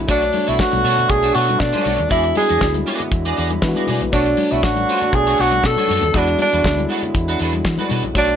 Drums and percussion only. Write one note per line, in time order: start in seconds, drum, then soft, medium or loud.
0.09 kick loud
0.09 closed hi-hat medium
0.22 closed hi-hat soft
0.33 open hi-hat medium
0.33 high conga loud
0.48 closed hi-hat medium
0.59 kick loud
0.59 snare loud
0.59 muted conga soft
0.73 closed hi-hat soft
0.73 high conga medium
0.86 open hi-hat medium
0.98 closed hi-hat medium
0.98 low conga medium
1.10 kick loud
1.10 closed hi-hat medium
1.10 muted conga soft
1.24 closed hi-hat medium
1.35 open hi-hat medium
1.35 muted conga soft
1.49 closed hi-hat soft
1.49 high conga medium
1.60 kick loud
1.60 snare loud
1.60 muted conga soft
1.74 closed hi-hat soft
1.74 high conga medium
1.85 open hi-hat medium
1.85 high conga medium
1.98 closed hi-hat medium
1.98 low conga medium
2.10 kick loud
2.10 closed hi-hat medium
2.24 closed hi-hat medium
2.35 open hi-hat medium
2.35 muted conga soft
2.35 high conga medium
2.49 closed hi-hat soft
2.61 kick loud
2.61 snare loud
2.61 muted conga soft
2.74 closed hi-hat soft
2.74 high conga medium
2.87 open hi-hat medium
2.87 muted conga soft
3.00 closed hi-hat medium
3.00 low conga medium
3.12 kick loud
3.12 closed hi-hat medium
3.12 muted conga soft
3.26 closed hi-hat medium
3.37 open hi-hat medium
3.50 closed hi-hat medium
3.50 high conga medium
3.62 kick loud
3.62 snare loud
3.62 muted conga soft
3.75 closed hi-hat medium
3.75 high conga medium
3.87 open hi-hat medium
3.87 high conga medium
4.01 closed hi-hat soft
4.01 low conga medium
4.13 kick loud
4.13 closed hi-hat medium
4.13 muted conga soft
4.26 closed hi-hat soft
4.37 open hi-hat medium
4.37 high conga loud
4.51 closed hi-hat soft
4.63 kick loud
4.63 snare medium
4.76 closed hi-hat soft
4.76 high conga medium
4.89 open hi-hat medium
5.01 closed hi-hat medium
5.01 low conga medium
5.13 kick loud
5.13 closed hi-hat medium
5.13 muted conga soft
5.27 closed hi-hat medium
5.38 open hi-hat medium
5.38 muted conga soft
5.52 closed hi-hat medium
5.52 high conga medium
5.63 kick loud
5.63 snare loud
5.63 muted conga soft
5.76 closed hi-hat medium
5.76 high conga medium
5.88 open hi-hat medium
5.88 high conga medium
6.01 closed hi-hat soft
6.01 low conga medium
6.14 kick loud
6.14 closed hi-hat medium
6.14 muted conga soft
6.27 closed hi-hat soft
6.39 open hi-hat medium
6.39 muted conga soft
6.39 high conga loud
6.53 closed hi-hat soft
6.64 kick loud
6.64 snare loud
6.77 closed hi-hat soft
6.77 high conga medium
6.91 open hi-hat medium
7.03 closed hi-hat soft
7.03 low conga medium
7.14 kick loud
7.14 closed hi-hat medium
7.14 muted conga soft
7.29 closed hi-hat medium
7.39 open hi-hat medium
7.39 muted conga soft
7.53 closed hi-hat soft
7.53 high conga medium
7.65 kick loud
7.65 snare loud
7.78 closed hi-hat soft
7.78 high conga medium
7.89 open hi-hat medium
7.89 muted conga soft
7.89 high conga medium
8.03 closed hi-hat medium
8.03 low conga medium
8.15 kick loud
8.15 closed hi-hat medium
8.28 closed hi-hat soft